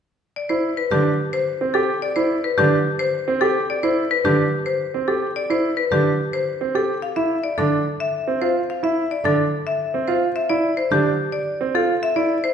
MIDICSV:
0, 0, Header, 1, 4, 480
1, 0, Start_track
1, 0, Key_signature, 0, "minor"
1, 0, Tempo, 555556
1, 188, Time_signature, 3, 2, 24, 8
1, 10832, End_track
2, 0, Start_track
2, 0, Title_t, "Marimba"
2, 0, Program_c, 0, 12
2, 314, Note_on_c, 0, 74, 44
2, 426, Note_on_c, 0, 72, 45
2, 466, Note_off_c, 0, 74, 0
2, 583, Note_off_c, 0, 72, 0
2, 668, Note_on_c, 0, 71, 45
2, 790, Note_on_c, 0, 67, 50
2, 824, Note_off_c, 0, 71, 0
2, 945, Note_off_c, 0, 67, 0
2, 1150, Note_on_c, 0, 72, 55
2, 1305, Note_off_c, 0, 72, 0
2, 1503, Note_on_c, 0, 69, 49
2, 1662, Note_off_c, 0, 69, 0
2, 1748, Note_on_c, 0, 74, 52
2, 1865, Note_on_c, 0, 72, 47
2, 1904, Note_off_c, 0, 74, 0
2, 2023, Note_off_c, 0, 72, 0
2, 2110, Note_on_c, 0, 71, 52
2, 2226, Note_on_c, 0, 67, 53
2, 2265, Note_off_c, 0, 71, 0
2, 2383, Note_off_c, 0, 67, 0
2, 2586, Note_on_c, 0, 72, 59
2, 2743, Note_off_c, 0, 72, 0
2, 2945, Note_on_c, 0, 69, 57
2, 3103, Note_off_c, 0, 69, 0
2, 3196, Note_on_c, 0, 74, 53
2, 3311, Note_on_c, 0, 72, 53
2, 3347, Note_off_c, 0, 74, 0
2, 3465, Note_off_c, 0, 72, 0
2, 3550, Note_on_c, 0, 71, 52
2, 3671, Note_on_c, 0, 67, 52
2, 3705, Note_off_c, 0, 71, 0
2, 3825, Note_off_c, 0, 67, 0
2, 4025, Note_on_c, 0, 72, 50
2, 4183, Note_off_c, 0, 72, 0
2, 4387, Note_on_c, 0, 69, 44
2, 4544, Note_off_c, 0, 69, 0
2, 4631, Note_on_c, 0, 74, 49
2, 4756, Note_on_c, 0, 72, 44
2, 4785, Note_off_c, 0, 74, 0
2, 4907, Note_off_c, 0, 72, 0
2, 4985, Note_on_c, 0, 71, 49
2, 5112, Note_on_c, 0, 67, 50
2, 5143, Note_off_c, 0, 71, 0
2, 5266, Note_off_c, 0, 67, 0
2, 5472, Note_on_c, 0, 72, 50
2, 5625, Note_off_c, 0, 72, 0
2, 5835, Note_on_c, 0, 69, 46
2, 5987, Note_off_c, 0, 69, 0
2, 6069, Note_on_c, 0, 77, 47
2, 6188, Note_on_c, 0, 76, 46
2, 6224, Note_off_c, 0, 77, 0
2, 6344, Note_off_c, 0, 76, 0
2, 6424, Note_on_c, 0, 74, 46
2, 6547, Note_on_c, 0, 69, 48
2, 6583, Note_off_c, 0, 74, 0
2, 6704, Note_off_c, 0, 69, 0
2, 6915, Note_on_c, 0, 76, 49
2, 7066, Note_off_c, 0, 76, 0
2, 7271, Note_on_c, 0, 72, 53
2, 7425, Note_off_c, 0, 72, 0
2, 7516, Note_on_c, 0, 77, 44
2, 7635, Note_on_c, 0, 76, 43
2, 7667, Note_off_c, 0, 77, 0
2, 7787, Note_off_c, 0, 76, 0
2, 7873, Note_on_c, 0, 74, 47
2, 7995, Note_on_c, 0, 69, 53
2, 8026, Note_off_c, 0, 74, 0
2, 8146, Note_off_c, 0, 69, 0
2, 8352, Note_on_c, 0, 76, 51
2, 8505, Note_off_c, 0, 76, 0
2, 8706, Note_on_c, 0, 72, 48
2, 8863, Note_off_c, 0, 72, 0
2, 8949, Note_on_c, 0, 76, 50
2, 9067, Note_on_c, 0, 74, 50
2, 9104, Note_off_c, 0, 76, 0
2, 9224, Note_off_c, 0, 74, 0
2, 9307, Note_on_c, 0, 72, 51
2, 9432, Note_on_c, 0, 67, 52
2, 9463, Note_off_c, 0, 72, 0
2, 9585, Note_off_c, 0, 67, 0
2, 9784, Note_on_c, 0, 74, 52
2, 9943, Note_off_c, 0, 74, 0
2, 10152, Note_on_c, 0, 69, 54
2, 10306, Note_off_c, 0, 69, 0
2, 10392, Note_on_c, 0, 76, 54
2, 10507, Note_on_c, 0, 74, 46
2, 10545, Note_off_c, 0, 76, 0
2, 10664, Note_off_c, 0, 74, 0
2, 10746, Note_on_c, 0, 72, 55
2, 10832, Note_off_c, 0, 72, 0
2, 10832, End_track
3, 0, Start_track
3, 0, Title_t, "Grand piano"
3, 0, Program_c, 1, 0
3, 429, Note_on_c, 1, 64, 47
3, 584, Note_off_c, 1, 64, 0
3, 790, Note_on_c, 1, 62, 48
3, 945, Note_off_c, 1, 62, 0
3, 1391, Note_on_c, 1, 60, 49
3, 1509, Note_on_c, 1, 67, 53
3, 1545, Note_off_c, 1, 60, 0
3, 1664, Note_off_c, 1, 67, 0
3, 1868, Note_on_c, 1, 64, 49
3, 2024, Note_off_c, 1, 64, 0
3, 2228, Note_on_c, 1, 62, 52
3, 2384, Note_off_c, 1, 62, 0
3, 2831, Note_on_c, 1, 60, 56
3, 2950, Note_on_c, 1, 67, 59
3, 2985, Note_off_c, 1, 60, 0
3, 3105, Note_off_c, 1, 67, 0
3, 3311, Note_on_c, 1, 64, 53
3, 3465, Note_off_c, 1, 64, 0
3, 3668, Note_on_c, 1, 62, 48
3, 3824, Note_off_c, 1, 62, 0
3, 4271, Note_on_c, 1, 60, 47
3, 4387, Note_on_c, 1, 67, 43
3, 4425, Note_off_c, 1, 60, 0
3, 4544, Note_off_c, 1, 67, 0
3, 4751, Note_on_c, 1, 64, 46
3, 4905, Note_off_c, 1, 64, 0
3, 5110, Note_on_c, 1, 62, 44
3, 5265, Note_off_c, 1, 62, 0
3, 5711, Note_on_c, 1, 60, 47
3, 5830, Note_on_c, 1, 67, 41
3, 5865, Note_off_c, 1, 60, 0
3, 5985, Note_off_c, 1, 67, 0
3, 6190, Note_on_c, 1, 64, 46
3, 6345, Note_off_c, 1, 64, 0
3, 6550, Note_on_c, 1, 62, 49
3, 6705, Note_off_c, 1, 62, 0
3, 7150, Note_on_c, 1, 60, 47
3, 7270, Note_on_c, 1, 65, 46
3, 7305, Note_off_c, 1, 60, 0
3, 7425, Note_off_c, 1, 65, 0
3, 7628, Note_on_c, 1, 64, 47
3, 7784, Note_off_c, 1, 64, 0
3, 7986, Note_on_c, 1, 62, 45
3, 8143, Note_off_c, 1, 62, 0
3, 8589, Note_on_c, 1, 60, 51
3, 8708, Note_on_c, 1, 65, 52
3, 8744, Note_off_c, 1, 60, 0
3, 8864, Note_off_c, 1, 65, 0
3, 9069, Note_on_c, 1, 64, 51
3, 9224, Note_off_c, 1, 64, 0
3, 9429, Note_on_c, 1, 62, 50
3, 9584, Note_off_c, 1, 62, 0
3, 10028, Note_on_c, 1, 60, 51
3, 10148, Note_on_c, 1, 65, 55
3, 10184, Note_off_c, 1, 60, 0
3, 10304, Note_off_c, 1, 65, 0
3, 10506, Note_on_c, 1, 64, 48
3, 10663, Note_off_c, 1, 64, 0
3, 10832, End_track
4, 0, Start_track
4, 0, Title_t, "Cello"
4, 0, Program_c, 2, 42
4, 788, Note_on_c, 2, 50, 45
4, 878, Note_off_c, 2, 50, 0
4, 2231, Note_on_c, 2, 50, 55
4, 2320, Note_off_c, 2, 50, 0
4, 3673, Note_on_c, 2, 50, 48
4, 3761, Note_off_c, 2, 50, 0
4, 5112, Note_on_c, 2, 50, 46
4, 5201, Note_off_c, 2, 50, 0
4, 6551, Note_on_c, 2, 50, 47
4, 6640, Note_off_c, 2, 50, 0
4, 7989, Note_on_c, 2, 50, 44
4, 8078, Note_off_c, 2, 50, 0
4, 9429, Note_on_c, 2, 50, 43
4, 9519, Note_off_c, 2, 50, 0
4, 10832, End_track
0, 0, End_of_file